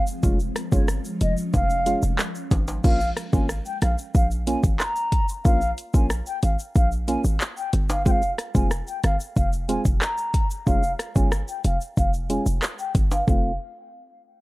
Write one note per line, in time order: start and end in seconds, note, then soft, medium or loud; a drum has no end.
0.00 0.19 F3 medium
0.00 2.80 G#3 medium
0.00 0.21 C4 medium
0.07 shaker medium
0.23 0.51 F1 loud
0.23 2.82 F3 medium
0.23 0.39 G#3 loud
0.23 2.81 C#4 medium
0.23 0.39 C#4 medium
0.23 0.39 F4 loud
0.23 kick loud
0.23 shaker medium
0.40 shaker medium
0.40 shaker soft
0.56 cross-stick medium
0.56 closed hi-hat medium
0.56 shaker medium
0.72 1.00 G1 medium
0.72 0.88 G#3 medium
0.72 0.88 C#4 medium
0.72 0.88 F4 medium
0.72 0.85 C#5 medium
0.72 kick medium
0.72 shaker medium
0.88 cross-stick medium
0.88 shaker medium
1.05 shaker medium
1.21 1.35 F1 medium
1.21 1.33 D#5 medium
1.21 closed hi-hat medium
1.21 shaker medium
1.37 shaker medium
1.54 1.95 F1 loud
1.54 2.00 F5 loud
1.54 kick medium
1.54 high timbale medium
1.54 shaker medium
1.70 shaker medium
1.86 2.02 G#3 medium
1.86 2.02 C#4 medium
1.86 2.02 F4 medium
1.86 closed hi-hat medium
1.86 shaker medium
1.86 shaker soft
2.03 2.16 F1 medium
2.03 shaker medium
2.19 cross-stick medium
2.19 clap medium
2.19 shaker medium
2.35 shaker medium
2.35 shaker soft
2.51 2.79 G#1 medium
2.51 kick loud
2.51 closed hi-hat medium
2.51 high timbale medium
2.51 shaker medium
2.68 high timbale medium
2.68 shaker medium
2.84 3.12 A#1 loud
2.84 3.00 A#3 loud
2.84 3.00 C#4 medium
2.84 3.00 F4 loud
2.84 3.09 F5 loud
2.84 kick loud
2.84 crash loud
2.84 shaker medium
3.01 shaker soft
3.01 shaker medium
3.17 cross-stick medium
3.17 closed hi-hat medium
3.17 shaker medium
3.17 shaker soft
3.33 3.61 G#1 medium
3.33 3.49 A#3 medium
3.33 3.49 C#4 medium
3.33 3.49 F4 medium
3.33 3.45 G#5 medium
3.33 kick medium
3.33 shaker medium
3.49 cross-stick medium
3.49 shaker medium
3.65 3.78 G5 medium
3.65 shaker medium
3.82 3.96 A#1 medium
3.82 3.94 F5 medium
3.82 cross-stick medium
3.82 closed hi-hat medium
3.82 shaker medium
3.98 shaker medium
4.15 4.56 A#1 loud
4.15 4.27 F5 medium
4.15 kick medium
4.15 shaker medium
4.31 shaker medium
4.47 4.63 A#3 medium
4.47 4.63 C#4 medium
4.47 4.63 F4 medium
4.47 4.60 G#5 medium
4.47 closed hi-hat medium
4.47 shaker medium
4.47 shaker soft
4.63 4.77 G#1 medium
4.63 kick medium
4.63 shaker medium
4.80 5.26 A#5 medium
4.80 4.85 C6 medium
4.80 cross-stick medium
4.80 clap medium
4.80 shaker medium
4.96 shaker soft
5.12 kick loud
5.12 closed hi-hat medium
5.12 shaker medium
5.29 shaker medium
5.45 5.73 A#1 loud
5.45 5.61 A#3 medium
5.45 5.61 C#4 medium
5.45 5.61 F4 loud
5.45 5.70 F5 loud
5.45 kick loud
5.45 shaker medium
5.61 shaker soft
5.61 shaker medium
5.78 closed hi-hat medium
5.78 shaker medium
5.94 6.21 A#1 medium
5.94 6.10 A#3 medium
5.94 6.10 C#4 medium
5.94 6.10 F4 medium
5.94 6.06 G#5 medium
5.94 kick medium
5.94 shaker medium
6.10 cross-stick medium
6.10 shaker medium
6.26 6.39 G5 medium
6.26 shaker medium
6.43 6.57 G#1 loud
6.43 6.55 F5 medium
6.43 closed hi-hat medium
6.43 shaker medium
6.59 shaker medium
6.75 7.17 A#1 loud
6.75 6.88 F5 medium
6.75 kick medium
6.75 shaker medium
6.92 shaker medium
7.08 7.24 A#3 medium
7.08 7.24 C#4 medium
7.08 7.24 F4 medium
7.08 7.20 G#5 medium
7.08 closed hi-hat medium
7.08 shaker medium
7.08 shaker soft
7.24 7.38 G#1 medium
7.24 shaker medium
7.41 clap medium
7.41 shaker medium
7.57 7.69 G5 medium
7.57 shaker medium
7.57 shaker soft
7.73 8.07 G1 loud
7.73 closed hi-hat medium
7.73 shaker medium
7.90 8.02 F5 medium
7.90 high timbale medium
7.90 shaker medium
8.05 8.33 F1 loud
8.05 8.22 G#3 loud
8.05 8.22 C4 medium
8.05 8.22 F4 loud
8.05 8.12 G5 loud
8.05 kick loud
8.05 shaker medium
8.11 8.31 F5 loud
8.22 shaker medium
8.38 cross-stick medium
8.38 closed hi-hat medium
8.38 shaker medium
8.38 shaker soft
8.54 8.82 F1 medium
8.54 8.71 G#3 medium
8.54 8.71 C4 medium
8.54 8.71 F4 medium
8.54 8.67 G#5 medium
8.54 kick medium
8.54 shaker medium
8.71 cross-stick medium
8.71 shaker medium
8.87 9.00 G5 medium
8.87 shaker medium
9.04 9.17 G1 loud
9.04 9.16 F5 medium
9.04 cross-stick medium
9.04 closed hi-hat medium
9.04 shaker medium
9.20 shaker medium
9.36 9.78 F1 loud
9.36 9.49 F5 medium
9.36 kick medium
9.36 shaker medium
9.53 shaker medium
9.69 9.85 G#3 medium
9.69 9.85 C4 medium
9.69 9.85 F4 medium
9.69 9.81 G#5 medium
9.69 closed hi-hat medium
9.69 shaker medium
9.69 shaker soft
9.85 9.99 F1 medium
9.85 kick medium
9.85 shaker medium
10.01 10.47 A#5 medium
10.01 cross-stick medium
10.01 clap medium
10.01 shaker medium
10.18 shaker medium
10.18 shaker soft
10.34 kick loud
10.34 closed hi-hat medium
10.34 shaker medium
10.50 shaker medium
10.66 10.94 F1 loud
10.66 10.83 G#3 loud
10.66 10.83 C#4 medium
10.66 10.83 F4 loud
10.66 10.91 F5 loud
10.66 kick loud
10.66 shaker medium
10.83 shaker medium
10.99 cross-stick medium
10.99 closed hi-hat medium
10.99 shaker medium
11.15 11.43 G1 medium
11.15 11.31 G#3 medium
11.15 11.32 C#4 medium
11.15 11.32 F4 medium
11.15 11.28 G#5 medium
11.15 kick medium
11.15 shaker medium
11.32 cross-stick loud
11.32 shaker medium
11.48 11.61 G5 medium
11.48 shaker medium
11.64 11.78 F1 loud
11.64 11.77 F5 medium
11.64 closed hi-hat medium
11.64 shaker medium
11.81 shaker medium
11.97 12.38 F1 loud
11.97 12.10 F5 medium
11.97 kick medium
11.97 shaker medium
12.14 shaker medium
12.30 12.46 G#3 medium
12.30 12.46 C#4 medium
12.30 12.46 F4 medium
12.30 12.42 G#5 medium
12.30 closed hi-hat medium
12.30 shaker medium
12.30 shaker soft
12.46 12.60 F1 medium
12.46 shaker medium
12.63 cross-stick medium
12.63 clap medium
12.63 shaker medium
12.79 12.91 G5 medium
12.79 shaker soft
12.95 13.22 G1 medium
12.95 kick loud
12.95 closed hi-hat medium
12.95 shaker medium
13.11 13.24 F5 medium
13.11 high timbale medium
13.11 shaker medium
13.27 13.58 F1 loud
13.27 13.52 A3 medium
13.27 13.52 C4 medium
13.27 13.52 F4 loud
13.27 13.58 F5 medium
13.27 kick loud
13.27 shaker medium